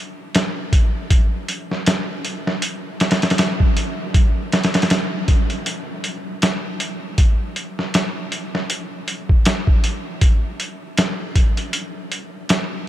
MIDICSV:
0, 0, Header, 1, 2, 480
1, 0, Start_track
1, 0, Tempo, 759494
1, 698, Time_signature, 4, 2, 24, 8
1, 8141, End_track
2, 0, Start_track
2, 0, Title_t, "Drums"
2, 218, Note_on_c, 9, 42, 82
2, 225, Note_on_c, 9, 38, 114
2, 282, Note_off_c, 9, 42, 0
2, 288, Note_off_c, 9, 38, 0
2, 459, Note_on_c, 9, 36, 93
2, 459, Note_on_c, 9, 42, 64
2, 522, Note_off_c, 9, 36, 0
2, 523, Note_off_c, 9, 42, 0
2, 698, Note_on_c, 9, 36, 98
2, 698, Note_on_c, 9, 42, 80
2, 761, Note_off_c, 9, 36, 0
2, 761, Note_off_c, 9, 42, 0
2, 938, Note_on_c, 9, 42, 64
2, 1001, Note_off_c, 9, 42, 0
2, 1083, Note_on_c, 9, 38, 35
2, 1147, Note_off_c, 9, 38, 0
2, 1178, Note_on_c, 9, 42, 88
2, 1185, Note_on_c, 9, 38, 115
2, 1242, Note_off_c, 9, 42, 0
2, 1248, Note_off_c, 9, 38, 0
2, 1419, Note_on_c, 9, 42, 64
2, 1482, Note_off_c, 9, 42, 0
2, 1563, Note_on_c, 9, 38, 45
2, 1626, Note_off_c, 9, 38, 0
2, 1656, Note_on_c, 9, 42, 83
2, 1720, Note_off_c, 9, 42, 0
2, 1897, Note_on_c, 9, 42, 62
2, 1903, Note_on_c, 9, 38, 85
2, 1960, Note_off_c, 9, 42, 0
2, 1964, Note_on_c, 9, 42, 62
2, 1966, Note_off_c, 9, 38, 0
2, 1970, Note_on_c, 9, 38, 85
2, 2027, Note_off_c, 9, 42, 0
2, 2034, Note_off_c, 9, 38, 0
2, 2036, Note_on_c, 9, 42, 62
2, 2042, Note_on_c, 9, 38, 82
2, 2087, Note_off_c, 9, 42, 0
2, 2087, Note_on_c, 9, 42, 65
2, 2093, Note_off_c, 9, 38, 0
2, 2093, Note_on_c, 9, 38, 85
2, 2137, Note_off_c, 9, 42, 0
2, 2137, Note_on_c, 9, 42, 84
2, 2143, Note_off_c, 9, 38, 0
2, 2143, Note_on_c, 9, 38, 110
2, 2200, Note_off_c, 9, 42, 0
2, 2207, Note_off_c, 9, 38, 0
2, 2276, Note_on_c, 9, 36, 89
2, 2339, Note_off_c, 9, 36, 0
2, 2380, Note_on_c, 9, 42, 66
2, 2444, Note_off_c, 9, 42, 0
2, 2619, Note_on_c, 9, 36, 100
2, 2619, Note_on_c, 9, 42, 77
2, 2682, Note_off_c, 9, 36, 0
2, 2682, Note_off_c, 9, 42, 0
2, 2859, Note_on_c, 9, 42, 58
2, 2866, Note_on_c, 9, 38, 77
2, 2922, Note_off_c, 9, 42, 0
2, 2929, Note_off_c, 9, 38, 0
2, 2929, Note_on_c, 9, 42, 59
2, 2936, Note_on_c, 9, 38, 77
2, 2993, Note_off_c, 9, 42, 0
2, 2996, Note_on_c, 9, 42, 61
2, 2999, Note_off_c, 9, 38, 0
2, 3002, Note_on_c, 9, 38, 81
2, 3046, Note_off_c, 9, 42, 0
2, 3046, Note_on_c, 9, 42, 62
2, 3053, Note_off_c, 9, 38, 0
2, 3053, Note_on_c, 9, 38, 80
2, 3098, Note_off_c, 9, 42, 0
2, 3098, Note_on_c, 9, 42, 83
2, 3104, Note_off_c, 9, 38, 0
2, 3104, Note_on_c, 9, 38, 112
2, 3161, Note_off_c, 9, 42, 0
2, 3167, Note_off_c, 9, 38, 0
2, 3337, Note_on_c, 9, 42, 61
2, 3338, Note_on_c, 9, 36, 85
2, 3400, Note_off_c, 9, 42, 0
2, 3401, Note_off_c, 9, 36, 0
2, 3475, Note_on_c, 9, 42, 38
2, 3539, Note_off_c, 9, 42, 0
2, 3578, Note_on_c, 9, 42, 87
2, 3641, Note_off_c, 9, 42, 0
2, 3816, Note_on_c, 9, 42, 66
2, 3880, Note_off_c, 9, 42, 0
2, 4058, Note_on_c, 9, 42, 87
2, 4064, Note_on_c, 9, 38, 114
2, 4121, Note_off_c, 9, 42, 0
2, 4128, Note_off_c, 9, 38, 0
2, 4298, Note_on_c, 9, 42, 77
2, 4361, Note_off_c, 9, 42, 0
2, 4537, Note_on_c, 9, 42, 79
2, 4538, Note_on_c, 9, 36, 95
2, 4600, Note_off_c, 9, 42, 0
2, 4601, Note_off_c, 9, 36, 0
2, 4778, Note_on_c, 9, 42, 61
2, 4842, Note_off_c, 9, 42, 0
2, 4923, Note_on_c, 9, 38, 37
2, 4986, Note_off_c, 9, 38, 0
2, 5018, Note_on_c, 9, 42, 81
2, 5024, Note_on_c, 9, 38, 109
2, 5081, Note_off_c, 9, 42, 0
2, 5088, Note_off_c, 9, 38, 0
2, 5258, Note_on_c, 9, 42, 63
2, 5321, Note_off_c, 9, 42, 0
2, 5402, Note_on_c, 9, 38, 43
2, 5465, Note_off_c, 9, 38, 0
2, 5497, Note_on_c, 9, 42, 86
2, 5560, Note_off_c, 9, 42, 0
2, 5737, Note_on_c, 9, 42, 65
2, 5800, Note_off_c, 9, 42, 0
2, 5874, Note_on_c, 9, 36, 89
2, 5937, Note_off_c, 9, 36, 0
2, 5975, Note_on_c, 9, 42, 86
2, 5982, Note_on_c, 9, 38, 115
2, 6039, Note_off_c, 9, 42, 0
2, 6045, Note_off_c, 9, 38, 0
2, 6114, Note_on_c, 9, 36, 91
2, 6177, Note_off_c, 9, 36, 0
2, 6217, Note_on_c, 9, 42, 68
2, 6280, Note_off_c, 9, 42, 0
2, 6455, Note_on_c, 9, 42, 80
2, 6456, Note_on_c, 9, 36, 105
2, 6519, Note_off_c, 9, 42, 0
2, 6520, Note_off_c, 9, 36, 0
2, 6697, Note_on_c, 9, 42, 63
2, 6760, Note_off_c, 9, 42, 0
2, 6936, Note_on_c, 9, 42, 86
2, 6942, Note_on_c, 9, 38, 107
2, 6999, Note_off_c, 9, 42, 0
2, 7006, Note_off_c, 9, 38, 0
2, 7176, Note_on_c, 9, 42, 62
2, 7177, Note_on_c, 9, 36, 86
2, 7240, Note_off_c, 9, 36, 0
2, 7240, Note_off_c, 9, 42, 0
2, 7314, Note_on_c, 9, 42, 41
2, 7377, Note_off_c, 9, 42, 0
2, 7414, Note_on_c, 9, 42, 87
2, 7477, Note_off_c, 9, 42, 0
2, 7657, Note_on_c, 9, 42, 65
2, 7720, Note_off_c, 9, 42, 0
2, 7895, Note_on_c, 9, 42, 88
2, 7902, Note_on_c, 9, 38, 119
2, 7958, Note_off_c, 9, 42, 0
2, 7965, Note_off_c, 9, 38, 0
2, 8141, End_track
0, 0, End_of_file